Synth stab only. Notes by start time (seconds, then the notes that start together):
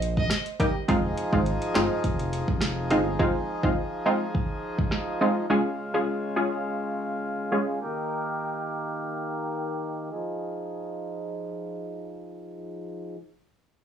0.60 G3 A#3 D#4 G4
0.88 G#3 C4 D#4 F4
1.33 G#3 C4 D#4 F4
1.75 G#3 C4 D#4 F4
2.90 G#3 C4 D#4 F4
3.19 G#3 C4 D#4 F4
3.63 G#3 C4 D#4 F4
4.05 G#3 C4 D#4 F4
5.21 G#3 C4 D#4 F4
5.50 G#3 C#4 F4 G#4
5.94 G#3 C#4 F4 G#4
6.36 G#3 C#4 F4 G#4
7.52 G#3 C#4 F4 G#4